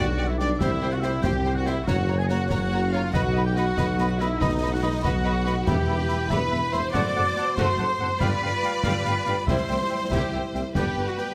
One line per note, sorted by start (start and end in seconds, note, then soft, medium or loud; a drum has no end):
0.00 0.53 B1 medium
0.00 1.70 G3 medium
0.00 0.61 D4 medium
0.00 0.29 F#4 medium
0.00 0.12 F#5 medium
0.00 0.29 F#5 medium
0.17 0.27 G3 medium
0.17 0.27 G4 medium
0.17 0.27 D5 medium
0.17 0.26 D5 medium
0.17 0.24 G5 medium
0.27 0.40 E4 medium
0.27 0.37 E5 medium
0.27 0.39 E5 medium
0.27 0.33 E5 medium
0.37 0.49 G3 medium
0.37 0.61 D4 medium
0.37 0.49 G4 medium
0.37 0.58 D5 medium
0.37 0.60 D5 medium
0.37 0.50 D5 medium
0.37 0.49 D5 medium
0.37 0.44 G5 medium
0.37 snare soft
0.58 1.16 C2 medium
0.58 1.17 C2 medium
0.58 0.69 G3 medium
0.58 1.70 C4 medium
0.58 0.92 E4 medium
0.58 0.69 G4 medium
0.58 0.69 C5 medium
0.58 0.91 E5 medium
0.58 0.92 E5 medium
0.58 0.66 G5 medium
0.58 concert bass drum medium
0.58 snare medium
0.62 0.72 C5 medium
0.81 0.90 G3 medium
0.81 0.90 G4 medium
0.81 0.90 C5 medium
0.81 0.92 C5 medium
0.81 0.87 G5 medium
0.91 1.04 F#4 medium
0.91 0.96 F#5 medium
0.91 1.02 F#5 medium
0.91 1.03 F#5 medium
1.00 1.11 G3 medium
1.00 1.24 E4 medium
1.00 1.12 G4 medium
1.00 1.11 C5 medium
1.00 1.13 C5 medium
1.00 1.22 E5 medium
1.00 1.23 E5 medium
1.00 1.13 E5 medium
1.00 1.08 G5 medium
1.00 snare soft
1.22 1.80 C2 medium
1.22 1.33 G3 medium
1.22 1.56 G4 medium
1.22 1.33 G4 medium
1.22 1.33 C5 medium
1.22 1.30 G5 medium
1.22 1.37 G5 medium
1.22 1.29 G5 medium
1.22 1.55 G5 medium
1.22 concert bass drum medium
1.22 snare medium
1.26 1.34 C5 medium
1.45 1.54 G3 medium
1.45 1.54 G4 medium
1.45 1.53 C5 medium
1.45 1.56 C5 medium
1.45 1.51 G5 medium
1.54 1.66 F#4 medium
1.54 1.65 F#5 medium
1.54 1.60 F#5 medium
1.54 1.66 F#5 medium
1.65 1.75 G3 medium
1.65 1.87 E4 medium
1.65 1.75 G4 soft
1.65 1.76 C5 medium
1.65 1.75 C5 medium
1.65 1.87 E5 medium
1.65 1.89 E5 medium
1.65 1.87 E5 medium
1.65 1.71 G5 medium
1.65 snare soft
1.85 2.43 F#1 medium
1.85 2.44 F#1 medium
1.85 3.11 A#3 medium
1.85 1.97 A#3 medium
1.85 3.14 C#4 medium
1.85 2.18 F#4 medium
1.85 1.96 C#5 medium
1.85 1.98 C#5 medium
1.85 2.17 F#5 medium
1.85 2.20 F#5 medium
1.85 2.19 F#5 medium
1.85 1.93 A#5 medium
1.85 concert bass drum medium
1.85 snare medium
1.89 1.97 F#4 medium
2.08 2.17 A#3 medium
2.08 2.17 F#4 medium
2.08 2.17 C#5 medium
2.08 2.19 C#5 medium
2.08 2.14 A#5 soft
2.18 2.30 G#4 medium
2.18 2.29 G#5 medium
2.18 2.23 G#5 medium
2.18 2.24 G#5 medium
2.29 2.37 A#3 medium
2.29 2.49 F#4 medium
2.29 2.38 F#4 soft
2.29 2.37 C#5 soft
2.29 2.39 C#5 medium
2.29 2.48 F#5 medium
2.29 2.50 F#5 medium
2.29 2.36 A#5 medium
2.29 snare medium
2.48 3.07 F#1 medium
2.48 2.98 F#1 medium
2.48 2.58 A#3 medium
2.48 2.58 F#4 medium
2.48 2.92 F#4 medium
2.48 2.58 C#5 medium
2.48 2.91 F#5 medium
2.48 2.92 F#5 medium
2.48 2.94 F#5 medium
2.48 2.57 A#5 medium
2.48 concert bass drum medium
2.48 snare medium
2.71 2.80 A#3 medium
2.71 2.80 F#4 medium
2.71 2.81 C#5 medium
2.71 2.80 C#5 medium
2.71 2.80 A#5 medium
2.91 3.01 A#3 medium
2.91 3.14 F4 medium
2.91 3.01 F#4 medium
2.91 3.02 C#5 medium
2.91 3.01 C#5 medium
2.91 3.13 F5 medium
2.91 3.12 F5 medium
2.91 3.02 F5 medium
2.95 3.01 A#5 medium
3.11 3.70 B1 medium
3.11 7.54 B2 medium
3.11 3.22 B3 medium
3.11 3.22 D#4 medium
3.11 5.64 D#4 medium
3.11 3.45 F#4 medium
3.11 3.22 B4 medium
3.11 3.23 D#5 medium
3.11 3.44 F#5 medium
3.11 3.45 F#5 medium
3.11 3.21 B5 medium
3.11 concert bass drum medium
3.11 snare medium
3.33 3.44 B3 medium
3.33 3.44 D#4 medium
3.33 3.44 B4 medium
3.33 3.43 D#5 medium
3.33 3.43 B5 medium
3.42 3.56 G4 medium
3.42 3.54 G5 medium
3.42 3.56 G5 medium
3.47 3.57 G5 medium
3.55 3.65 B3 medium
3.55 3.64 D#4 medium
3.55 4.08 F#4 medium
3.55 3.64 B4 medium
3.55 3.66 D#5 medium
3.55 4.07 F#5 medium
3.55 4.08 F#5 medium
3.55 3.64 B5 medium
3.55 snare soft
3.77 4.33 B1 medium
3.77 4.34 B1 medium
3.77 3.86 B3 medium
3.77 3.86 D#4 medium
3.77 3.86 B4 medium
3.77 3.87 D#5 medium
3.77 3.85 B5 medium
3.77 concert bass drum medium
3.77 snare medium
3.98 4.06 B3 medium
3.98 4.06 D#4 medium
3.98 4.08 B4 medium
3.98 4.09 D#5 medium
3.98 4.06 B5 medium
3.98 snare medium
4.08 4.20 F#4 medium
4.08 4.13 F#5 medium
4.08 4.19 F#5 medium
4.08 4.23 F#5 medium
4.18 4.27 B3 medium
4.18 4.27 D#4 medium
4.18 4.40 E4 medium
4.18 4.28 B4 medium
4.18 4.29 D#5 medium
4.18 4.26 E5 medium
4.18 4.41 E5 medium
4.18 4.43 E5 medium
4.18 4.26 B5 medium
4.18 snare soft
4.39 4.96 B1 medium
4.39 4.97 B1 medium
4.39 4.48 B3 medium
4.39 4.72 D#4 medium
4.39 4.48 D#4 medium
4.39 4.48 B4 medium
4.39 4.71 D#5 medium
4.39 4.73 D#5 medium
4.39 4.72 D#5 medium
4.39 4.51 D#5 medium
4.39 4.47 B5 medium
4.39 concert bass drum medium
4.39 snare medium
4.61 4.69 B3 medium
4.61 4.69 D#4 medium
4.61 4.70 B4 medium
4.61 4.72 D#5 medium
4.61 4.68 B5 medium
4.71 4.83 F#4 medium
4.71 4.82 F#5 medium
4.71 4.83 F#5 medium
4.71 4.78 F#5 medium
4.82 4.91 B3 medium
4.82 5.04 D#4 medium
4.82 4.91 D#4 medium
4.82 4.91 B4 medium
4.82 5.04 D#5 medium
4.82 4.93 D#5 medium
4.82 5.04 D#5 medium
4.82 4.88 B5 medium
5.01 5.59 B1 medium
5.01 5.60 B1 medium
5.01 5.12 B3 medium
5.01 5.12 D#4 medium
5.01 5.66 F#4 medium
5.01 5.12 B4 medium
5.01 5.14 D#5 medium
5.01 5.66 F#5 medium
5.01 5.07 B5 medium
5.01 concert bass drum medium
5.01 snare medium
5.05 5.68 F#5 medium
5.05 5.45 F#5 medium
5.24 5.32 B3 medium
5.24 5.32 D#4 medium
5.24 5.32 B4 medium
5.24 5.34 D#5 medium
5.24 5.31 B5 medium
5.45 5.53 B3 medium
5.45 5.53 D#4 medium
5.45 5.54 B4 medium
5.45 5.56 D#5 medium
5.45 5.53 B5 medium
5.45 snare soft
5.66 5.76 E1 medium
5.66 6.26 E2 medium
5.66 5.75 E2 medium
5.66 5.86 B3 medium
5.66 6.94 E4 medium
5.66 5.86 G4 medium
5.66 6.30 G4 medium
5.66 6.90 B4 medium
5.66 5.77 E5 medium
5.66 6.32 G5 medium
5.66 6.30 G5 medium
5.66 5.73 B5 medium
5.66 concert bass drum medium
5.66 snare medium
5.66 crash soft
5.87 5.97 E1 medium
5.87 5.97 E2 medium
5.87 5.96 B3 medium
5.87 5.97 E5 medium
5.87 5.94 B5 medium
6.08 6.18 E5 medium
6.08 6.14 B5 medium
6.08 snare soft
6.30 6.40 E1 medium
6.30 6.38 E2 medium
6.30 6.50 B3 medium
6.30 6.50 G4 medium
6.30 6.72 B4 medium
6.30 6.39 E5 medium
6.30 6.72 B5 medium
6.30 6.75 B5 medium
6.30 6.37 B5 medium
6.30 concert bass drum medium
6.30 snare medium
6.51 6.62 E1 medium
6.51 6.60 E2 medium
6.51 6.59 B3 medium
6.51 6.61 E5 medium
6.51 6.57 B5 medium
6.72 6.82 E1 medium
6.72 6.82 E2 medium
6.72 6.80 B3 medium
6.72 6.80 E4 soft
6.72 6.94 C5 loud
6.72 6.82 E5 medium
6.72 6.78 B5 medium
6.72 6.94 C6 medium
6.72 6.93 C6 medium
6.72 snare soft
6.92 7.04 F#1 medium
6.92 7.03 F#2 medium
6.92 7.13 A3 medium
6.92 8.04 F#4 medium
6.92 7.13 F#4 medium
6.92 8.21 C5 medium
6.92 7.56 D5 medium
6.92 7.03 F#5 medium
6.92 7.00 A5 medium
6.92 7.57 D6 medium
6.92 7.56 D6 medium
6.92 concert bass drum medium
6.92 snare medium
7.15 7.24 F#1 medium
7.15 7.24 F#2 medium
7.15 7.23 A3 medium
7.15 7.26 F#5 medium
7.15 7.22 A5 medium
7.36 7.46 F#5 medium
7.36 7.44 A5 medium
7.36 snare soft
7.56 7.67 F#1 medium
7.56 7.66 F#2 medium
7.56 7.77 A3 medium
7.56 8.04 A3 medium
7.56 7.77 F#4 medium
7.56 8.19 C5 medium
7.56 7.68 F#5 medium
7.56 8.21 C6 medium
7.56 8.19 C6 medium
7.56 8.21 C6 medium
7.56 concert bass drum medium
7.56 snare medium
7.61 7.67 A5 medium
7.78 7.88 F#1 medium
7.78 7.86 F#2 medium
7.78 7.87 A3 medium
7.78 7.88 F#5 medium
7.78 7.85 A5 medium
7.99 8.09 F#1 medium
7.99 8.07 F#2 medium
7.99 8.07 A3 medium
7.99 8.07 C4 medium
7.99 8.10 F#5 medium
7.99 8.08 A5 medium
8.20 8.31 G1 medium
8.20 8.29 G2 medium
8.20 8.40 G3 medium
8.20 11.34 G3 medium
8.20 8.40 F4 medium
8.20 9.46 F4 medium
8.20 8.83 B4 loud
8.20 9.48 D5 medium
8.20 8.30 F5 medium
8.20 8.27 G5 medium
8.20 8.84 B5 medium
8.20 8.83 B5 medium
8.20 concert bass drum medium
8.20 snare medium
8.41 8.51 G1 medium
8.41 8.50 G2 medium
8.41 8.50 G3 medium
8.41 8.49 B3 soft
8.41 8.52 F5 medium
8.41 8.48 G5 medium
8.63 8.74 F5 medium
8.63 8.70 G5 medium
8.63 snare soft
8.83 8.93 G1 medium
8.83 8.93 G2 medium
8.83 9.04 G3 medium
8.83 9.03 F4 medium
8.83 9.47 B4 medium
8.83 8.94 F5 medium
8.83 8.92 G5 medium
8.83 9.47 B5 medium
8.83 concert bass drum medium
8.83 snare medium
9.05 9.15 G1 medium
9.05 9.13 G2 medium
9.05 9.13 G3 medium
9.05 9.13 B3 medium
9.05 9.15 F5 medium
9.05 9.13 G5 medium
9.05 snare soft
9.26 9.36 G1 medium
9.26 9.35 G2 medium
9.26 9.34 G3 medium
9.26 9.34 D4 medium
9.26 9.36 F5 medium
9.26 9.35 G5 medium
9.26 snare soft
9.47 9.56 C2 medium
9.47 9.57 C2 medium
9.47 9.68 G3 medium
9.47 9.68 E4 medium
9.47 10.75 E4 medium
9.47 10.72 C5 medium
9.47 10.11 C5 medium
9.47 9.57 E5 medium
9.47 9.55 G5 medium
9.47 10.12 C6 medium
9.47 10.13 C6 medium
9.47 10.12 C6 medium
9.47 concert bass drum medium
9.47 snare medium
9.68 9.77 C2 medium
9.68 9.79 C2 medium
9.68 9.77 G3 medium
9.68 9.78 E5 medium
9.68 9.75 G5 medium
9.89 9.99 E5 medium
9.89 9.96 G5 medium
10.10 10.19 C2 medium
10.10 10.21 C2 medium
10.10 10.31 G3 medium
10.10 10.31 E4 medium
10.10 10.33 G4 medium
10.10 10.20 E5 medium
10.10 10.33 G5 medium
10.10 10.18 G5 medium
10.10 10.33 G5 medium
10.10 concert bass drum medium
10.10 snare medium
10.32 10.41 C2 soft
10.32 10.42 C2 medium
10.32 10.41 G3 medium
10.32 10.42 E5 medium
10.32 10.42 G5 medium
10.53 10.63 C2 medium
10.53 10.62 G3 medium
10.53 10.61 C4 medium
10.53 10.64 E5 soft
10.53 10.60 G5 medium
10.53 snare soft
10.75 10.84 G1 medium
10.75 10.85 G1 medium
10.75 11.34 B3 medium
10.75 10.95 B3 medium
10.75 10.95 D4 medium
10.75 11.05 G4 medium
10.75 10.85 B4 medium
10.75 11.34 B4 medium
10.75 11.05 G5 medium
10.75 10.82 G5 medium
10.75 10.90 G5 medium
10.75 11.06 G5 medium
10.75 concert bass drum medium
10.75 snare medium
10.96 11.05 G1 soft
10.96 11.06 G1 medium
10.96 11.04 G3 medium
10.96 11.05 B3 soft
10.96 11.07 B4 medium
10.96 11.02 G5 soft
11.07 11.18 F#4 medium
11.07 11.11 F#5 medium
11.07 11.17 F#5 medium
11.07 11.18 F#5 medium
11.17 11.34 G4 medium
11.17 11.28 B4 medium
11.17 11.34 G5 medium
11.17 11.27 G5 medium
11.17 11.34 G5 medium
11.17 11.26 G5 soft
11.17 snare soft